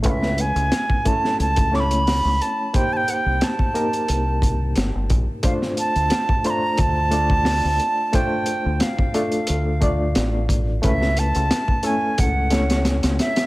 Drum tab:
HH |x-xxx-x-xx-xo-x-|x-x-x-xxx-x-x-x-|x-xxx-x-x-x-o-x-|x-x-x-xxx-x-x-x-|
SD |-o--o--o--o-o---|----o-------o---|-o--o-------o---|----o-------o---|
BD |o----oo--o------|o----o----o---o-|o----o--o--o----|o----o----o---o-|

HH |x-xxx-x-x-xxxxxx|
SD |-o--o-----oooooo|
BD |o----o--o-------|